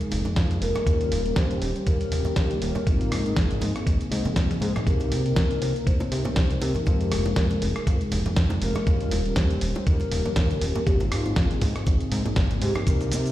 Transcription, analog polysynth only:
0, 0, Header, 1, 2, 480
1, 0, Start_track
1, 0, Key_signature, -4, "major"
1, 0, Tempo, 500000
1, 833, Time_signature, 4, 2, 24, 8
1, 12785, End_track
2, 0, Start_track
2, 0, Title_t, "Analog polysynth"
2, 0, Program_c, 0, 90
2, 0, Note_on_c, 0, 56, 83
2, 0, Note_on_c, 0, 58, 74
2, 0, Note_on_c, 0, 63, 72
2, 0, Note_on_c, 0, 68, 91
2, 802, Note_off_c, 0, 56, 0
2, 805, Note_off_c, 0, 58, 0
2, 808, Note_off_c, 0, 63, 0
2, 811, Note_off_c, 0, 68, 0
2, 825, Note_on_c, 0, 55, 90
2, 828, Note_on_c, 0, 58, 80
2, 832, Note_on_c, 0, 61, 79
2, 835, Note_on_c, 0, 65, 97
2, 1171, Note_off_c, 0, 55, 0
2, 1173, Note_off_c, 0, 58, 0
2, 1174, Note_off_c, 0, 61, 0
2, 1176, Note_off_c, 0, 65, 0
2, 1196, Note_on_c, 0, 55, 85
2, 1202, Note_on_c, 0, 58, 75
2, 1209, Note_on_c, 0, 61, 76
2, 1215, Note_on_c, 0, 67, 91
2, 2722, Note_off_c, 0, 55, 0
2, 2725, Note_off_c, 0, 58, 0
2, 2729, Note_off_c, 0, 61, 0
2, 2731, Note_off_c, 0, 67, 0
2, 2748, Note_on_c, 0, 58, 87
2, 2750, Note_on_c, 0, 60, 77
2, 2753, Note_on_c, 0, 63, 81
2, 2756, Note_on_c, 0, 65, 96
2, 3092, Note_off_c, 0, 58, 0
2, 3094, Note_off_c, 0, 60, 0
2, 3095, Note_off_c, 0, 63, 0
2, 3096, Note_off_c, 0, 65, 0
2, 3118, Note_on_c, 0, 58, 81
2, 3123, Note_on_c, 0, 60, 77
2, 3129, Note_on_c, 0, 63, 73
2, 3136, Note_on_c, 0, 68, 92
2, 4643, Note_off_c, 0, 58, 0
2, 4646, Note_off_c, 0, 60, 0
2, 4649, Note_off_c, 0, 63, 0
2, 4652, Note_off_c, 0, 68, 0
2, 4666, Note_on_c, 0, 58, 86
2, 4669, Note_on_c, 0, 60, 80
2, 4673, Note_on_c, 0, 63, 78
2, 4675, Note_on_c, 0, 67, 97
2, 5012, Note_off_c, 0, 58, 0
2, 5013, Note_off_c, 0, 60, 0
2, 5015, Note_off_c, 0, 63, 0
2, 5016, Note_off_c, 0, 67, 0
2, 5033, Note_on_c, 0, 58, 84
2, 5039, Note_on_c, 0, 60, 76
2, 5046, Note_on_c, 0, 63, 76
2, 5053, Note_on_c, 0, 70, 89
2, 6561, Note_off_c, 0, 58, 0
2, 6564, Note_off_c, 0, 60, 0
2, 6567, Note_off_c, 0, 63, 0
2, 6570, Note_off_c, 0, 70, 0
2, 6585, Note_on_c, 0, 56, 89
2, 6588, Note_on_c, 0, 58, 81
2, 6595, Note_on_c, 0, 67, 98
2, 6931, Note_off_c, 0, 56, 0
2, 6933, Note_off_c, 0, 58, 0
2, 6936, Note_off_c, 0, 67, 0
2, 6956, Note_on_c, 0, 56, 83
2, 6962, Note_on_c, 0, 58, 77
2, 6970, Note_on_c, 0, 63, 76
2, 6976, Note_on_c, 0, 68, 91
2, 8482, Note_off_c, 0, 56, 0
2, 8485, Note_off_c, 0, 58, 0
2, 8489, Note_off_c, 0, 63, 0
2, 8492, Note_off_c, 0, 68, 0
2, 8505, Note_on_c, 0, 55, 90
2, 8514, Note_on_c, 0, 65, 98
2, 8851, Note_off_c, 0, 55, 0
2, 8855, Note_off_c, 0, 65, 0
2, 8875, Note_on_c, 0, 55, 83
2, 8881, Note_on_c, 0, 58, 75
2, 8887, Note_on_c, 0, 61, 76
2, 8893, Note_on_c, 0, 67, 88
2, 10402, Note_off_c, 0, 55, 0
2, 10404, Note_off_c, 0, 58, 0
2, 10408, Note_off_c, 0, 61, 0
2, 10411, Note_off_c, 0, 67, 0
2, 10426, Note_on_c, 0, 58, 89
2, 10430, Note_on_c, 0, 60, 80
2, 10433, Note_on_c, 0, 63, 79
2, 10435, Note_on_c, 0, 65, 100
2, 10771, Note_off_c, 0, 58, 0
2, 10773, Note_off_c, 0, 60, 0
2, 10775, Note_off_c, 0, 63, 0
2, 10776, Note_off_c, 0, 65, 0
2, 10796, Note_on_c, 0, 58, 86
2, 10802, Note_on_c, 0, 60, 76
2, 10810, Note_on_c, 0, 63, 76
2, 10816, Note_on_c, 0, 68, 91
2, 12322, Note_off_c, 0, 58, 0
2, 12325, Note_off_c, 0, 60, 0
2, 12329, Note_off_c, 0, 63, 0
2, 12332, Note_off_c, 0, 68, 0
2, 12349, Note_on_c, 0, 58, 91
2, 12351, Note_on_c, 0, 60, 82
2, 12355, Note_on_c, 0, 63, 81
2, 12359, Note_on_c, 0, 67, 100
2, 12693, Note_off_c, 0, 58, 0
2, 12694, Note_off_c, 0, 60, 0
2, 12696, Note_off_c, 0, 63, 0
2, 12698, Note_off_c, 0, 67, 0
2, 12717, Note_on_c, 0, 58, 82
2, 12725, Note_on_c, 0, 60, 75
2, 12731, Note_on_c, 0, 63, 74
2, 12737, Note_on_c, 0, 70, 90
2, 12785, Note_off_c, 0, 58, 0
2, 12785, Note_off_c, 0, 60, 0
2, 12785, Note_off_c, 0, 63, 0
2, 12785, Note_off_c, 0, 70, 0
2, 12785, End_track
0, 0, End_of_file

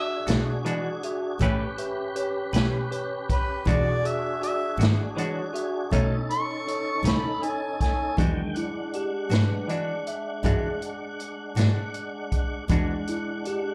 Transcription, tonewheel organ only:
0, 0, Header, 1, 2, 480
1, 0, Start_track
1, 0, Tempo, 753012
1, 2337, Time_signature, 12, 3, 24, 8
1, 8760, End_track
2, 0, Start_track
2, 0, Title_t, "Tonewheel organ"
2, 0, Program_c, 0, 16
2, 0, Note_on_c, 0, 62, 55
2, 0, Note_on_c, 0, 66, 58
2, 0, Note_on_c, 0, 68, 59
2, 881, Note_off_c, 0, 62, 0
2, 883, Note_off_c, 0, 66, 0
2, 884, Note_off_c, 0, 68, 0
2, 902, Note_on_c, 0, 61, 62
2, 905, Note_on_c, 0, 71, 61
2, 906, Note_on_c, 0, 67, 63
2, 2324, Note_off_c, 0, 61, 0
2, 2326, Note_off_c, 0, 71, 0
2, 2327, Note_off_c, 0, 67, 0
2, 2338, Note_on_c, 0, 68, 55
2, 2342, Note_on_c, 0, 66, 61
2, 2343, Note_on_c, 0, 62, 57
2, 3762, Note_off_c, 0, 68, 0
2, 3764, Note_off_c, 0, 62, 0
2, 3764, Note_off_c, 0, 66, 0
2, 3773, Note_on_c, 0, 69, 60
2, 3779, Note_on_c, 0, 63, 56
2, 3781, Note_on_c, 0, 61, 59
2, 5199, Note_off_c, 0, 69, 0
2, 5202, Note_off_c, 0, 63, 0
2, 5203, Note_off_c, 0, 61, 0
2, 5214, Note_on_c, 0, 79, 47
2, 5218, Note_on_c, 0, 56, 44
2, 5226, Note_on_c, 0, 51, 47
2, 5441, Note_off_c, 0, 56, 0
2, 5445, Note_on_c, 0, 78, 49
2, 5449, Note_on_c, 0, 56, 50
2, 5449, Note_on_c, 0, 62, 49
2, 5454, Note_off_c, 0, 79, 0
2, 5460, Note_off_c, 0, 51, 0
2, 8063, Note_off_c, 0, 78, 0
2, 8065, Note_off_c, 0, 56, 0
2, 8065, Note_off_c, 0, 62, 0
2, 8086, Note_on_c, 0, 62, 55
2, 8089, Note_on_c, 0, 56, 54
2, 8094, Note_on_c, 0, 78, 56
2, 8760, Note_off_c, 0, 56, 0
2, 8760, Note_off_c, 0, 62, 0
2, 8760, Note_off_c, 0, 78, 0
2, 8760, End_track
0, 0, End_of_file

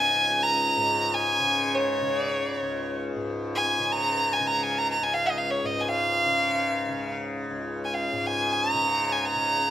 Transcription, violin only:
0, 0, Header, 1, 2, 480
1, 0, Start_track
1, 0, Tempo, 500000
1, 9316, End_track
2, 0, Start_track
2, 0, Title_t, "Violin"
2, 0, Program_c, 0, 40
2, 0, Note_on_c, 0, 80, 113
2, 419, Note_on_c, 0, 82, 96
2, 433, Note_off_c, 0, 80, 0
2, 1093, Note_on_c, 0, 80, 93
2, 1107, Note_off_c, 0, 82, 0
2, 1678, Note_on_c, 0, 73, 84
2, 1692, Note_off_c, 0, 80, 0
2, 2110, Note_off_c, 0, 73, 0
2, 2110, Note_on_c, 0, 74, 84
2, 2225, Note_off_c, 0, 74, 0
2, 2225, Note_on_c, 0, 73, 84
2, 2350, Note_off_c, 0, 73, 0
2, 2350, Note_on_c, 0, 74, 84
2, 2465, Note_off_c, 0, 74, 0
2, 2465, Note_on_c, 0, 73, 84
2, 2890, Note_off_c, 0, 73, 0
2, 3413, Note_on_c, 0, 80, 84
2, 3766, Note_on_c, 0, 82, 89
2, 3781, Note_off_c, 0, 80, 0
2, 4156, Note_on_c, 0, 80, 81
2, 4170, Note_off_c, 0, 82, 0
2, 4294, Note_on_c, 0, 82, 84
2, 4309, Note_off_c, 0, 80, 0
2, 4401, Note_off_c, 0, 82, 0
2, 4401, Note_on_c, 0, 82, 50
2, 4444, Note_on_c, 0, 80, 70
2, 4458, Note_off_c, 0, 82, 0
2, 4590, Note_on_c, 0, 82, 78
2, 4605, Note_off_c, 0, 80, 0
2, 4705, Note_off_c, 0, 82, 0
2, 4711, Note_on_c, 0, 82, 69
2, 4830, Note_on_c, 0, 80, 70
2, 4844, Note_off_c, 0, 82, 0
2, 4934, Note_on_c, 0, 77, 77
2, 4948, Note_off_c, 0, 80, 0
2, 5050, Note_on_c, 0, 75, 72
2, 5064, Note_off_c, 0, 77, 0
2, 5165, Note_on_c, 0, 77, 69
2, 5180, Note_off_c, 0, 75, 0
2, 5285, Note_on_c, 0, 73, 71
2, 5300, Note_off_c, 0, 77, 0
2, 5432, Note_on_c, 0, 75, 69
2, 5447, Note_off_c, 0, 73, 0
2, 5571, Note_on_c, 0, 80, 56
2, 5585, Note_off_c, 0, 75, 0
2, 5647, Note_on_c, 0, 77, 90
2, 5661, Note_off_c, 0, 80, 0
2, 6869, Note_off_c, 0, 77, 0
2, 7534, Note_on_c, 0, 80, 53
2, 7622, Note_on_c, 0, 77, 68
2, 7636, Note_off_c, 0, 80, 0
2, 7935, Note_on_c, 0, 80, 80
2, 7950, Note_off_c, 0, 77, 0
2, 8179, Note_on_c, 0, 82, 82
2, 8194, Note_off_c, 0, 80, 0
2, 8757, Note_on_c, 0, 80, 75
2, 8772, Note_off_c, 0, 82, 0
2, 8885, Note_on_c, 0, 82, 83
2, 8899, Note_off_c, 0, 80, 0
2, 9316, Note_off_c, 0, 82, 0
2, 9316, End_track
0, 0, End_of_file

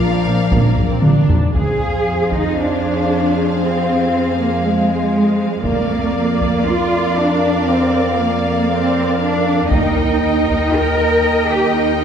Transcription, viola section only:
0, 0, Header, 1, 2, 480
1, 0, Start_track
1, 0, Tempo, 515021
1, 1442, Time_signature, 4, 2, 24, 8
1, 4309, Tempo, 509338
1, 11301, End_track
2, 0, Start_track
2, 0, Title_t, "Viola section"
2, 0, Program_c, 0, 48
2, 0, Note_on_c, 0, 53, 50
2, 444, Note_off_c, 0, 53, 0
2, 476, Note_on_c, 0, 58, 60
2, 839, Note_off_c, 0, 58, 0
2, 853, Note_on_c, 0, 60, 53
2, 966, Note_on_c, 0, 62, 59
2, 967, Note_off_c, 0, 60, 0
2, 1443, Note_on_c, 0, 68, 41
2, 1445, Note_off_c, 0, 62, 0
2, 1447, Note_off_c, 0, 68, 0
2, 1447, Note_on_c, 0, 68, 48
2, 5234, Note_off_c, 0, 68, 0
2, 5268, Note_on_c, 0, 74, 52
2, 5271, Note_on_c, 0, 70, 53
2, 9066, Note_off_c, 0, 74, 0
2, 9067, Note_off_c, 0, 70, 0
2, 9101, Note_on_c, 0, 75, 54
2, 9105, Note_on_c, 0, 70, 53
2, 11301, Note_off_c, 0, 70, 0
2, 11301, Note_off_c, 0, 75, 0
2, 11301, End_track
0, 0, End_of_file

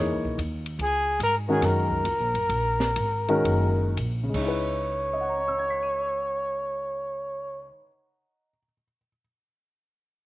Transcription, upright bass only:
0, 0, Header, 1, 2, 480
1, 0, Start_track
1, 0, Tempo, 414651
1, 921, Time_signature, 4, 2, 24, 8
1, 2376, Tempo, 465839
1, 3816, Tempo, 540541
1, 4776, Tempo, 583090
1, 9489, End_track
2, 0, Start_track
2, 0, Title_t, "Upright bass"
2, 0, Program_c, 0, 32
2, 0, Note_on_c, 0, 40, 89
2, 132, Note_off_c, 0, 40, 0
2, 132, Note_on_c, 0, 37, 53
2, 282, Note_off_c, 0, 37, 0
2, 289, Note_on_c, 0, 35, 65
2, 433, Note_off_c, 0, 35, 0
2, 440, Note_on_c, 0, 39, 90
2, 903, Note_off_c, 0, 39, 0
2, 912, Note_on_c, 0, 37, 86
2, 1378, Note_off_c, 0, 37, 0
2, 1384, Note_on_c, 0, 44, 78
2, 1859, Note_off_c, 0, 44, 0
2, 1871, Note_on_c, 0, 42, 90
2, 2357, Note_off_c, 0, 42, 0
2, 2369, Note_on_c, 0, 37, 89
2, 2524, Note_off_c, 0, 37, 0
2, 2524, Note_on_c, 0, 34, 60
2, 2667, Note_off_c, 0, 34, 0
2, 2673, Note_on_c, 0, 30, 63
2, 2820, Note_off_c, 0, 30, 0
2, 2829, Note_on_c, 0, 34, 81
2, 3295, Note_off_c, 0, 34, 0
2, 3313, Note_on_c, 0, 32, 82
2, 3801, Note_off_c, 0, 32, 0
2, 3809, Note_on_c, 0, 30, 90
2, 4262, Note_off_c, 0, 30, 0
2, 4275, Note_on_c, 0, 34, 91
2, 4597, Note_off_c, 0, 34, 0
2, 4607, Note_on_c, 0, 37, 81
2, 7385, Note_off_c, 0, 37, 0
2, 9489, End_track
0, 0, End_of_file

